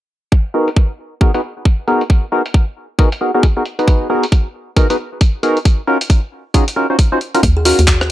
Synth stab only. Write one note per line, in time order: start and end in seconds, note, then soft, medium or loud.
0.54 0.69 B3 medium
0.54 0.69 D#4 medium
0.54 0.69 F#4 medium
0.54 0.69 G#4 medium
0.54 0.69 A#4 loud
1.21 1.31 B3 medium
1.21 1.31 D#4 medium
1.21 1.31 F#4 medium
1.21 1.31 G#4 medium
1.21 1.31 A#4 loud
1.34 1.41 B3 medium
1.34 1.41 D#4 medium
1.34 1.41 F#4 medium
1.34 1.41 G#4 medium
1.34 1.41 B4 loud
1.88 2.03 B3 loud
1.88 2.03 D#4 medium
1.88 2.03 F#4 medium
1.88 2.03 G#4 medium
1.88 2.03 A#4 loud
2.32 2.42 B3 medium
2.32 2.42 D#4 medium
2.32 2.42 F#4 medium
2.32 2.42 G#4 medium
2.32 2.42 A#4 loud
2.99 3.09 B3 medium
2.99 3.09 D#4 medium
2.99 3.09 F#4 medium
2.99 3.09 G#4 medium
2.99 3.09 A#4 loud
3.21 3.31 B3 medium
3.21 3.31 D#4 medium
3.21 3.31 F#4 medium
3.21 3.31 G#4 medium
3.21 3.31 A#4 medium
3.34 3.46 B3 medium
3.34 3.46 D#4 medium
3.34 3.46 F#4 medium
3.34 3.46 G#4 medium
3.34 3.46 A#4 loud
3.57 3.63 B3 medium
3.57 3.63 D#4 medium
3.57 3.63 F#4 medium
3.57 3.63 G#4 medium
3.57 3.63 A#4 medium
3.79 4.08 B3 medium
3.79 4.08 D#4 medium
3.79 4.08 F#4 medium
3.79 4.08 G#4 medium
3.79 4.08 B4 medium
4.10 4.25 B3 medium
4.10 4.25 D#4 medium
4.10 4.25 F#4 medium
4.10 4.25 G#4 medium
4.10 4.25 A#4 loud
4.76 4.87 B3 medium
4.76 4.87 D#4 medium
4.76 4.87 F#4 medium
4.76 4.87 G#4 medium
4.76 4.87 A#4 loud
4.90 4.96 B3 medium
4.90 4.96 D#4 medium
4.90 4.96 F#4 medium
4.90 4.96 G#4 medium
4.90 4.96 B4 loud
5.43 5.58 B3 medium
5.43 5.58 D#4 medium
5.43 5.58 F#4 medium
5.43 5.58 G#4 medium
5.43 5.58 A#4 loud
5.87 5.98 C#4 medium
5.87 5.98 D#4 medium
5.87 5.98 F4 medium
5.87 5.98 F#4 medium
5.87 5.98 A#4 loud
6.54 6.64 C#4 medium
6.54 6.64 D#4 medium
6.54 6.64 F4 medium
6.54 6.64 F#4 medium
6.54 6.64 G#4 loud
6.76 6.86 C#4 medium
6.76 6.86 D#4 medium
6.76 6.86 F4 medium
6.76 6.86 F#4 medium
6.76 6.86 A#4 medium
6.90 6.96 C#4 medium
6.90 6.96 D#4 medium
6.90 6.96 F4 medium
6.90 6.96 F#4 medium
6.90 6.96 C5 medium
7.12 7.19 C#4 medium
7.12 7.19 D#4 medium
7.12 7.19 F4 medium
7.12 7.19 F#4 medium
7.12 7.19 C5 loud
7.34 7.41 C#4 medium
7.34 7.41 D#4 medium
7.34 7.41 F4 medium
7.34 7.41 F#4 medium
7.34 7.41 A#4 loud
7.65 7.81 C#4 medium
7.65 7.80 D#4 medium
7.65 7.80 F4 medium
7.65 7.80 F#4 medium
7.65 7.81 A#4 loud